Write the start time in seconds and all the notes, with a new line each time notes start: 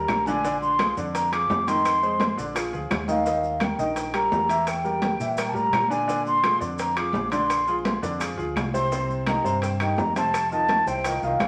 Already playing: G3 G4 A#4 A#5
0.08 A#1, high bongo, low bongo, high conga, high timbale, low timbale, claves, maracas
0.26 D3 D4 D5 G#5, high bongo, high conga, maracas
0.44 D3 D4 D5, high bongo, high conga, maracas
0.61 C6, high conga, maracas
0.79 F3 F4 G#4, high bongo, high conga, high timbale, low timbale, claves, maracas
0.97 F2 D3 D4 D5, high bongo, high conga, maracas
1.15 A#5, high bongo, high conga, high timbale, maracas
1.32 F3 F4 G#4 D6, high bongo, high conga, high timbale, claves, maracas
1.50 F2, high bongo, low bongo, high conga, low timbale, maracas
1.68 D#3 D#4 D#5 C6, high bongo, high conga, high timbale, maracas
1.85 high bongo, high conga, high timbale, claves, maracas
2.02 G#3 G#4 C5, high conga, maracas
2.20 high bongo, high conga, high timbale, low timbale, maracas
2.37 A#1 D3 D4 D5, high bongo, high conga, maracas
2.55 F3 F4 G#4, high bongo, high conga, high timbale, claves, maracas
2.72 D2 F3 F4 G#4, high bongo, high conga, maracas
2.90 D#2, high bongo, low bongo, high conga, high timbale, low timbale, claves, maracas
3.08 D#3 D#4 D#5 F5, high bongo, high conga, maracas
3.25 D#3 D#4 D#5, high bongo, high conga, maracas
3.43 high conga, maracas
3.60 G3 G4 A#4 G5, high bongo, high conga, high timbale, low timbale, claves, maracas
3.78 A#1 D#3 D#4 D#5, high bongo, high conga, maracas
3.96 G5, high bongo, high conga, high timbale, maracas
4.14 G3 G4 A#4 A#5, high bongo, high conga, high timbale, claves, maracas
4.31 E2, high bongo, low bongo, high conga, low timbale, maracas
4.49 E3 E4 E5, high bongo, high timbale, maracas
4.67 G5, high bongo, high conga, high timbale, claves, maracas
4.84 G3 G4 A#4, high conga, maracas
5.02 high bongo, high conga, high timbale, low timbale, maracas
5.20 A#2 E3 E4 E5, high bongo, high conga, maracas
5.37 G3 G4 A#4 G5, high bongo, high conga, high timbale, claves, maracas
5.49 A5
5.54 A2 G3 G4 A#4 A#5, high bongo, high conga, maracas
5.72 A#2, high bongo, low bongo, high conga, high timbale, low timbale, claves, maracas
5.90 D3 D4 D5 G#5, high bongo, maracas
6.07 D3 D4 D5, high bongo, high conga, maracas
6.26 C6, high conga, maracas
6.43 F3 F4 G#4, high bongo, high conga, high timbale, low timbale, claves, maracas
6.60 F2 D3 D4 D5, high bongo, high conga, maracas
6.78 A#5, high bongo, high conga, high timbale, maracas
6.96 F3 F4 G#4 D6, high bongo, high conga, high timbale, claves, maracas
7.13 A#1, high bongo, low bongo, high conga, low timbale, maracas
7.31 D3 D4 D5 C6, high bongo, high conga, high timbale, maracas
7.49 high bongo, high conga, high timbale, claves, maracas
7.67 F3 F4 G#4, high conga, maracas
7.85 high bongo, high conga, high timbale, low timbale, maracas
8.02 F2 D3 D4 D5, high bongo, high conga, maracas
8.19 F3 F4 G#4, high conga, high timbale, claves, maracas
8.37 D2 F3 F4 G#4, high conga, maracas
8.56 C2, high conga, high timbale, low timbale, claves, maracas
8.74 C3 C4 C5 C6, low bongo, maracas
8.92 C3 C4 C5, high bongo, high conga, maracas
9.09 high conga, maracas
9.27 D#3 D#4 G4 A#5, high bongo, high conga, high timbale, low timbale, claves, maracas
9.44 G2 C3 C4 C5, high bongo, high conga, maracas
9.62 G5, high bongo, high conga, high timbale, maracas
9.80 D#3 D#4 G4 G5, high bongo, high conga, high timbale, claves, maracas
9.98 F2 A#5, high bongo, low bongo, high conga, low timbale, maracas
10.16 C3 C4 C5 A5, high bongo, high conga, high timbale, maracas
10.34 high bongo, high conga, high timbale, claves, maracas
10.51 D#3 D#4 F4 A5, high conga, maracas
10.69 high bongo, high conga, high timbale, low timbale, maracas
10.86 C2 C3 C4 C5 G5, high bongo, high conga, maracas
11.04 D#3 D#4 F4, high bongo, high conga, high timbale, claves, maracas
11.22 C2 D#3 D#4 F4 F5, high bongo, high conga, maracas
11.40 A#1, high bongo, low bongo, high conga, high timbale, low timbale, claves, maracas